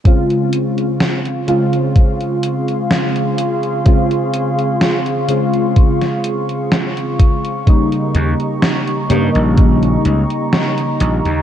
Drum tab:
HH |xxxxxxxxxxxxxxxx|xxxxxxxxxxxxxxxx|xxxxxxxxxxxxxxxx|
SD |----o-------o---|----o----o--o---|----o-------o---|
BD |o-------o-------|o-------o-----o-|o-------o-------|